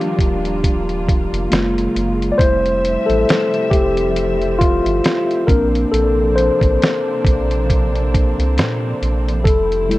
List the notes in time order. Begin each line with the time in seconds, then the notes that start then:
Already playing: D#3 F3 G3 A#3 D4 F4 G4
0.01 closed hi-hat
0.19 D#1, kick, closed hi-hat
0.45 closed hi-hat
0.64 kick, closed hi-hat
0.89 closed hi-hat
1.09 kick, closed hi-hat
1.32 F1, closed hi-hat
1.50 F#1 C#3 F#3 G#3 A#3 F4, snare, closed hi-hat
1.78 closed hi-hat
1.95 F#1, closed hi-hat
2.22 closed hi-hat
2.32 D5
2.38 F1 C3 F3 G3 A3 C4 E4 C5 E5, kick, closed hi-hat
2.66 closed hi-hat
2.85 closed hi-hat
3.06 A1 A4, closed hi-hat
3.29 snare, closed hi-hat
3.54 closed hi-hat
3.70 F1 G4, kick, closed hi-hat
3.97 closed hi-hat
4.16 closed hi-hat
4.42 closed hi-hat
4.59 F4, kick, closed hi-hat
4.85 G1, closed hi-hat
5.04 snare, closed hi-hat
5.31 closed hi-hat
5.47 A#1 C3 F3 A#3 C4 D4 A#4, kick, closed hi-hat
5.75 closed hi-hat
5.92 A#1 A4, closed hi-hat
6.36 C5, closed hi-hat
6.61 A1, kick, closed hi-hat
6.82 snare, closed hi-hat
7.25 A#1, kick, closed hi-hat
7.51 closed hi-hat
7.70 kick, closed hi-hat
7.95 closed hi-hat
8.14 kick, closed hi-hat
8.38 C2, closed hi-hat
8.57 A#2, snare, closed hi-hat
9.02 A#1, closed hi-hat
9.29 closed hi-hat
9.44 F1 C3 F3 G3 E4 A4, kick, closed hi-hat
9.72 closed hi-hat
9.89 G3 A3 E4, closed hi-hat